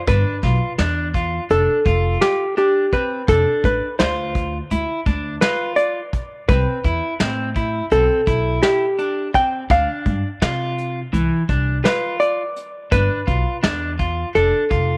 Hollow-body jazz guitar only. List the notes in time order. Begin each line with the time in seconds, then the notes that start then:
0.08 B4
1.51 A4
2.21 G4
2.58 G4
2.93 B4
3.29 A4
3.65 B4
3.99 C5
5.41 B4
5.76 D5
6.49 B4
7.92 A4
8.63 G4
9.35 G5
9.71 F5
11.85 B4
12.20 D5
12.92 B4
14.35 A4